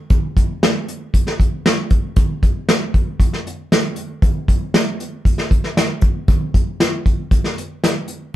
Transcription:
0.10 kick, closed hi-hat
0.37 kick, closed hi-hat
0.63 snare, closed hi-hat
0.88 closed hi-hat
1.14 kick, closed hi-hat
1.27 snare
1.40 kick, closed hi-hat
1.66 snare, closed hi-hat
1.90 kick, closed hi-hat
2.16 kick, closed hi-hat
2.43 kick, closed hi-hat
2.69 snare, closed hi-hat
2.94 kick, closed hi-hat
3.20 kick, closed hi-hat
3.33 snare
3.47 closed hi-hat
3.72 snare, closed hi-hat
3.96 closed hi-hat
4.22 kick, closed hi-hat
4.48 kick, closed hi-hat
4.74 snare, closed hi-hat
5.00 closed hi-hat
5.25 kick, closed hi-hat
5.38 snare
5.51 kick, closed hi-hat
5.64 snare
5.77 snare, closed hi-hat
6.01 kick, closed hi-hat
6.28 kick, closed hi-hat
6.54 kick, closed hi-hat
6.80 snare, closed hi-hat
7.06 kick, closed hi-hat
7.31 kick, closed hi-hat
7.44 snare
7.58 closed hi-hat
7.84 snare, closed hi-hat
8.08 closed hi-hat

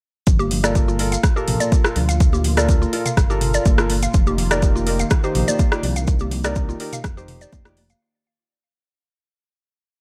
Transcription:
0.27 G1 A#2 F4, kick, closed hi-hat, low conga, maracas
0.39 G4, high conga, maracas
0.51 open hi-hat, low conga
0.63 F4 A4 A#4 D5, cross-stick, closed hi-hat, high conga, maracas
0.75 kick, closed hi-hat, maracas
0.88 F4, high conga, maracas
0.99 F4 A4 A#4, open hi-hat
1.12 F5, closed hi-hat, maracas
1.23 kick, cross-stick, closed hi-hat, maracas
1.36 F4 G4 A4 A#4, maracas
1.48 A#1, open hi-hat, mid tom, low conga
1.60 D5, closed hi-hat, high conga, maracas
1.72 kick, closed hi-hat, maracas
1.84 F4 A4 A#4, cross-stick, maracas
1.96 D2, open hi-hat, mid tom, low conga
2.09 F5, closed hi-hat, maracas
2.20 kick, closed hi-hat, maracas
2.33 G4, high conga, maracas
2.44 open hi-hat, low conga
2.57 F4 A4 A#4 D5, cross-stick, closed hi-hat, high conga, maracas
2.69 kick, closed hi-hat, maracas
2.82 F4, high conga, maracas
2.93 F4 A4 A#4, open hi-hat
3.06 F5, closed hi-hat, mid tom, maracas
3.17 G1, kick, cross-stick, closed hi-hat, maracas
3.30 F4 G4 A4 A#4, maracas
3.41 open hi-hat, mid tom
3.54 D5, closed hi-hat, maracas
3.65 G1, kick, closed hi-hat, high conga, maracas
3.78 F4 A4 A#4, cross-stick, maracas
3.90 open hi-hat, high conga
4.03 F5, closed hi-hat, maracas
4.14 F1 D#3 A#3, kick, closed hi-hat, low conga, maracas
4.27 G4, high conga, maracas
4.38 open hi-hat, low conga
4.51 D#4 G4 A#4 D5, cross-stick, closed hi-hat, high conga, maracas
4.62 kick, closed hi-hat, maracas
4.75 F4, high conga, maracas
4.87 D#4 G4 A#4, open hi-hat
4.99 F5, closed hi-hat, maracas
5.10 kick, cross-stick, closed hi-hat, maracas
5.24 D#4 G4 C5, maracas
5.35 A#1, open hi-hat, mid tom, low conga
5.48 D5, closed hi-hat, high conga, maracas
5.59 kick, closed hi-hat, maracas
5.72 D#4 F4 G4 D5, cross-stick, maracas
5.83 C2, open hi-hat, mid tom, low conga
5.96 F5, closed hi-hat, maracas
6.07 kick, closed hi-hat, maracas
6.19 G4, high conga, maracas
6.31 open hi-hat, low conga
6.44 D#4 G4 A#4 D5, cross-stick, closed hi-hat, high conga, maracas
6.56 kick, closed hi-hat, maracas
6.69 F4, high conga, maracas
6.80 D#4 G4 A#4, open hi-hat
6.93 F5, closed hi-hat, mid tom, maracas
7.04 F1, kick, cross-stick, closed hi-hat, maracas
7.17 D#4 G4 C5, maracas
7.28 open hi-hat, mid tom
7.41 D5, closed hi-hat, maracas
7.52 F1, kick, closed hi-hat, high conga, maracas
7.65 D#4 F4 G4 D5, cross-stick, maracas
7.77 open hi-hat, high conga
7.90 F5, closed hi-hat, maracas

